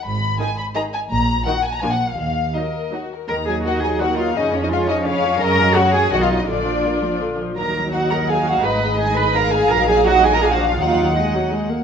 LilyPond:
<<
  \new Staff \with { instrumentName = "Violin section" } { \time 3/4 \key ees \minor \tempo 4 = 168 r4 <aes' ees''>4 <aes' ees''>4 | r4 <ges' bes'>4 <f' bes'>4 | r4 bes'4 ges'8 bes'8 | bes''8 aes''8 ges''8 aes''8 ges''8 f''8 |
ees''8 des''16 ees''16 f''8 ees''8 des''4 | bes''4 ges''8 aes''8 fis''16 f''8 dis''16 | d''2 r4 | bes''4 ges''8 bes''8 aes''8 ges''8 |
ces'''4 aes''8 ces'''8 bes''8 aes''8 | bes''8 aes''8 ges''8 aes''16 bes''16 aes''16 ges''8 f''16 | f''4 ees''4 r4 | }
  \new Staff \with { instrumentName = "Violin section" } { \time 3/4 \key ees \minor ces'''4 aes''8 ces'''8 bes''8 aes''8 | bes''4 ges''8 aes''16 bes''16 aes''16 ges''8 f''16 | f''4 ees''4 r4 | r4 ees''4 bes'4 |
aes'4 des''4 f''4 | ees''4 des''4 dis''4 | d''2~ d''8 r8 | r4 ges''4 f''4 |
ees''2 f''4~ | f''4 ees''4 f''4 | ges''2~ ges''8 r8 | }
  \new Staff \with { instrumentName = "Cello section" } { \time 3/4 \key ees \minor aes,4 r2 | bes,4 r4 bes,4 | ees4 r2 | bes'8 aes'8 ges'8 aes'8 ges'8 f'8 |
ees'8 des'16 ees'16 f'8 ees'8 des'4 | bes'4 ges'8 aes'8 fis'16 f'8 dis'16 | d'2 r4 | bes'4 ges'8 bes'8 aes'8 ges'8 |
ces''4 aes'8 ces''8 bes'8 aes'8 | bes'8 aes'8 ges'8 aes'16 bes'16 aes'16 ges'8 f'16 | f'4 ees'4 r4 | }
  \new Staff \with { instrumentName = "Viola section" } { \clef bass \time 3/4 \key ees \minor << { r4 ees'4 ees'4 | r4 ees'4 d'4 | r4 ees'4 ees'4 | ees'2. |
des'2.~ | des'2 dis'4 | f'2~ f'8 r8 | ees'2.~ |
ees'2. | ees'2 d'4 | ees'4 aes8 ges8 aes8 bes8 | } \\ { r4 ees4 ees4 | r4 ees4 f4 | r4 ges4 ges4 | ees8 ges8 ees8 ges8 ees8 ges8 |
des8 f8 aes8 f8 des8 f8 | des8 ges8 des8 ges8 dis8 fis8 | d8 f8 bes8 f8 d8 f8 | ges2. |
aes2. | ges2 f4 | ges4 r2 | } >> }
  \new Staff \with { instrumentName = "Double bass section" } { \clef bass \time 3/4 \key ees \minor aes,,4 r2 | bes,,4 r4 bes,,4 | ees,4 r2 | ees,2. |
f,2. | ges,2 b,,4 | bes,,2~ bes,,8 r8 | ees,2. |
aes,,2. | bes,,2. | ees,2~ ees,8 r8 | }
>>